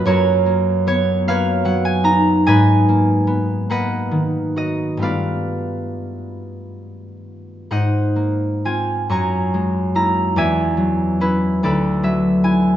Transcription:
<<
  \new Staff \with { instrumentName = "Harp" } { \time 6/8 \key gis \dorian \tempo 4. = 48 << { <b' cis'' fis''>4 cis''8 eis''8 fis''16 gis''16 ais''8 | gis''4. fis''4 dis''8 | f''2. | fis''4 gis''8 cis'''4 ais''8 |
gis''4 b'8 d''8 e''8 gis''8 | } \\ { <fis' ais'>4. <b' cis''>4. | <b' dis''>4. <b' dis''>4. | <b' d''>2. | <bis' dis''>4. <gis'' ais''>4. |
<d'' e''>4. <a' b'>4. | } >> }
  \new Staff \with { instrumentName = "Harp" } { \time 6/8 \key gis \dorian <fis, ais cis'>8 ais8 b8 ais8 fis8 dis'8 | gis,8 ais8 b8 ais8 dis8 fis'8 | <g, a b f'>2. | gis,8 ais8 <bis eis'>8 fis,8 gis8 <ais e'>8 |
e,8 fis8 <cis' e'>8 d,8 fis8 <b e'>8 | }
>>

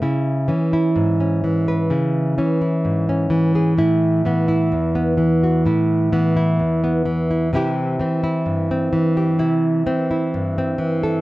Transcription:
\new Staff \with { instrumentName = "Nylon-string guitar" } { \time 4/4 \key cis \phrygian \tempo 4 = 64 << { e'8 cis'16 e'8 cis'8 b'16 e'8 cis'16 e'8 cis'8 gis'16 | e'8 b16 e'8 b8 fis'16 e'8 b16 e'8 b8 e'16 | <e c' e' g'>8 c'16 e'8 c'8 g'16 e'8 c'16 e'8 c'8 a'16 | } \\ { cis8 e8 gis,8 e8 cis8 e8 gis,8 e8 | a,8 e8 e,8 e8 a,8 e8 e,8 e8 | c8 e8 g,8 e8 c8 e8 g,8 e8 | } >> }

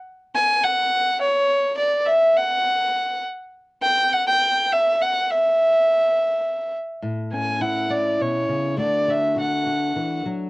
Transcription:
<<
  \new Staff \with { instrumentName = "Fiddle" } { \time 3/4 \key a \major \tempo 4 = 103 r8 gis''8 fis''4 cis''4 | d''8 e''8 fis''4. r8 | r8 g''8 fis''16 g''8. e''8 fis''8 | e''2~ e''8 r8 |
r8 gis''8 fis''8 d''8 cis''4 | d''8 e''8 fis''4. r8 | }
  \new Staff \with { instrumentName = "Steel-string acoustic guitar" } { \time 3/4 \key a \major << { r2. | r2. | r2. | r2. |
r8 cis'8 e'8 cis'4. | <a d' fis'>8 fis'8 fis'8 fis'4. | } \\ { r2. | r2. | r2. | r2. |
a,2 b,8 cis8 | d2 e8 fis8 | } >> }
>>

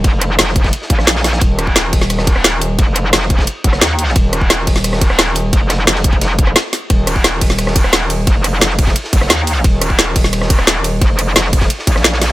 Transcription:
<<
  \new Staff \with { instrumentName = "Wobble bass" } { \clef bass \time 4/4 \key ees \minor \tempo 4 = 175 f,,4 f,,4 r8 bes,,4. | ees,,1 | f,,4 f,,4 r8 ges,,8 ees,4 | ees,,1 |
f,,4 f,,4 f,,4 r4 | ees,,1 | f,,4 f,,4 r8 ges,,8 ees,4 | ees,,1 |
f,,4 f,,4 r8 bes,,4. | }
  \new DrumStaff \with { instrumentName = "Drums" } \drummode { \time 4/4 <hh bd cymr>8 <hh cymr ss>8 <hh cymr sn>16 sn16 <hh bd cymr>16 <bd sn>16 <hh cymr>16 sn16 <hh bd cymr>16 <ss sn>16 <hh cymr sn>16 <cymr sn>16 <hho cymr sn>16 <cymr sn>16 | <hh bd cymr>8 <hh cymr ss>16 bd16 <hh cymr sn>8 <hh hho bd>16 sn16 <hh cymr ss>16 <ss sn>16 <hh bd cymr>16 ss16 <hh cymr sn>8 <hho cymr>8 | <hh bd cymr>8 <hh cymr ss>8 <hh cymr sn>16 sn16 <hh bd cymr>16 <bd sn>16 <hh cymr>8 <hh bd cymr>16 <ss sn>16 <hh cymr sn>16 cymr16 <hho cymr>16 sn16 | <hh bd cymr>8 <hh cymr ss>16 bd16 <hh cymr sn>8 <hh hho bd>16 sn16 <hh cymr ss>16 <ss sn>16 <hh bd cymr>16 ss16 <hh cymr sn>8 <hho cymr>8 |
<hh bd cymr>8 <hh cymr ss sn>8 <hh sn>16 <cymr sn>16 <hh bd>16 <bd cymr>16 <hh cymr sn>8 <hh bd cymr>16 ss16 <hh cymr sn>8 <hho cymr sn>8 | <hh bd cymr>8 <hh cymr ss>16 bd16 <hh cymr sn>8 <hh hho bd cymr>16 sn16 <hh cymr ss>16 <ss sn>16 <hh bd cymr>16 ss16 <hh cymr sn>8 <hho cymr>8 | <hh bd cymr>8 <hh cymr ss>8 <hh cymr sn>16 sn16 <hh bd cymr>16 <bd sn>16 <hh cymr>16 sn16 <hh bd cymr>16 <ss sn>16 <hh cymr sn>16 cymr16 <hho cymr>8 | <hh bd cymr>8 <hh cymr ss>16 bd16 <hh cymr sn>8 <hh hho bd cymr>16 sn16 <hh cymr ss>16 <ss sn>16 <hh bd cymr>16 ss16 <hh cymr sn>8 <hho cymr>8 |
<hh bd cymr>8 <hh cymr ss>8 <hh cymr sn>16 sn16 <hh bd cymr>16 <bd sn>16 <hh cymr>16 sn16 <hh bd cymr>16 <ss sn>16 <hh cymr sn>16 <cymr sn>16 <hho cymr sn>8 | }
>>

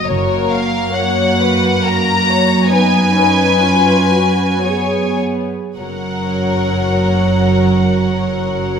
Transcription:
<<
  \new Staff \with { instrumentName = "Violin section" } { \time 3/4 \key fis \major \tempo 4 = 60 cis''8 eis''8 fis''4 ais''4 | gis''2~ gis''8 r8 | fis''2. | }
  \new Staff \with { instrumentName = "Violin section" } { \time 3/4 \key fis \major ais'4 cis''8 b'8 ais'8 cis''8 | b'2 cis''8 r8 | <ais' cis''>2. | }
  \new Staff \with { instrumentName = "Viola section" } { \time 3/4 \key fis \major << { fis'4 fis'8 fis'4. | dis'4 eis'8 fis'8 gis'8. r16 | fis'2. | } \\ { ais2. | b8 cis'8 cis'4 b8. r16 | fis2. | } >> }
  \new Staff \with { instrumentName = "Cello section" } { \clef bass \time 3/4 \key fis \major fis,2.~ | fis,2~ fis,8. r16 | fis,2. | }
  \new Staff \with { instrumentName = "Double bass section" } { \clef bass \time 3/4 \key fis \major fis,,4 r2 | r2. | fis,,2. | }
>>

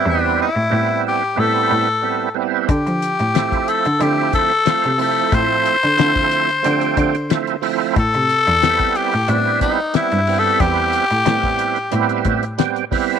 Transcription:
<<
  \new Staff \with { instrumentName = "Tenor saxophone" } { \time 4/4 \key a \minor \tempo 4 = 91 d'8 e'4 g'8 a'4. r8 | g'4. a'8 g'8 a'4 a'8 | c''2.~ c''8 r8 | a'4. g'8 d'8 dis'8 \tuplet 3/2 { e'4 a'8 } |
g'2. r4 | }
  \new Staff \with { instrumentName = "Tonewheel organ" } { \time 4/4 \key a \minor <g b c' e'>8 r8 <g b c' e'>4 <g b c' e'>4 <g b c' e'>8 <g b c' e'>8 | r4 <f a c' e'>4 <f a c' e'>4 <f a c' f'>8 <f a c' e'>8~ | <f a c' e'>8 r8 <f a c' e'>4 <f a c' g'>4 <f a c' e'>8 <f a c' e'>8 | r4 <g b c' e'>4 <g b c' e'>4 <g b c' e'>8 <g b c' e'>8~ |
<g b c' e'>8 r8 <g b c' e'>4 <g b c' e'>4 <g b c' g'>8 <g b c' e'>8 | }
  \new Staff \with { instrumentName = "Cello" } { \clef bass \time 4/4 \key a \minor e,8 r16 a,16 a,4 a,8 a,4. | d16 f8 a,8 r8 d16 d8 r8. c8 r16 | a,8 r16 d16 d4 d8 d4. | a,16 c8 e,8 r8 a,16 a,8 r8. g,8 r16 |
e,8 r16 a,16 a,4 a,8 a,4. | }
  \new DrumStaff \with { instrumentName = "Drums" } \drummode { \time 4/4 r4 r4 r4 r4 | <hh bd>16 hh16 hh16 hh16 <hh sn>16 <hh bd>16 hh16 hh16 hh8 <hh bd>8 <hh sn>16 hh16 hho8 | <hh bd>8 hh16 hh16 <hh sn>16 <hh bd>16 hh16 hh16 hh16 hh16 <hh bd>16 hh16 <hh sn>16 hh16 hho8 | <hh bd>16 hh16 hh16 hh16 <hh sn>16 <hh bd>16 hh16 hh16 hh8 <hh bd>8 <hh sn>16 hh16 hho8 |
<hh bd>8 hh16 hh16 <hh sn>16 <hh bd>16 hh16 hh16 hh16 hh16 <hh bd>16 hh16 <hh sn>16 hh16 <hho bd sn>8 | }
>>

